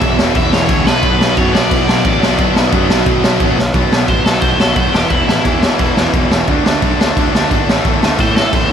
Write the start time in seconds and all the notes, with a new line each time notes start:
Already playing: E2 B2 E3 E5
0.01 B1, kick, crash
0.19 E1 E2 B2 E3, snare
0.35 E1 E5, kick, crash
0.53 E1 C#5, snare
0.69 D2 C#5, kick, crash
0.87 B1 B2 F#3 B3 B4, snare
1.03 B1, kick, crash
1.21 snare
1.37 F#2 B2 F#3 B3 C#5, kick, crash
1.54 B1 D5, snare
1.71 B1, kick, crash
1.88 B1, snare
2.05 A1 B2 F#3 B3, kick, crash
2.22 B1 B2 F#3 B3, snare
2.38 B1, kick, crash
2.56 snare
2.72 F#2 B2 F#3 B3, kick, crash
2.89 B1, snare
3.06 B1, kick, crash
3.23 B1, snare
3.40 A1 B2 F#3 B3, kick, crash
3.57 B1, snare
3.74 B1 B2 F#3 B3, kick, crash
3.91 B1 B2 F#3 B3, snare
4.08 A1 B2 F#3 B3 C5, kick, crash
4.25 B1 B2 F#3 B3 A4, snare
4.41 B1 B2 F#3 B3 C5, kick, crash
4.60 B1 B2 F#3 B3 A4, snare
4.76 B1 B2 F#3 B3 C5, kick, crash
4.93 E1 E2 B2 E3 G4, snare
5.09 E1 B2 E3 E4, kick, crash
5.13 E2
5.29 A1 E2 B2 E3, snare
5.45 E2 B2 E3, kick, crash
5.63 E2 B2 E3, snare
5.79 E1 B2 E3, kick, crash
5.83 E2
5.96 E2 B2 E3, snare
6.13 E1 B2 E3, kick, crash
6.18 E2
6.31 E1 E2 B2 E3, snare
6.47 D2 D3 A3 D4, kick, crash
6.65 D2 D3 A3 D4, snare
6.82 B1 D3 A3 D4, kick, crash
7.00 D2 D3 A3 D4, snare
7.17 D2 D3 A3 D4, kick, crash
7.35 D2 D3 A3 D4, snare
7.51 G#1 D3 A3 D4, kick, crash
7.68 A1 A2 E3 A3, snare
7.85 A1 A2 E3 A3, kick, crash
8.03 D2 A2 E3 A3, snare
8.19 A2 E3 A3 C5, kick, crash
8.36 A2 E3 A3 A4, snare
8.53 A1 A2 E3 A3 C5, kick, crash
8.69 A2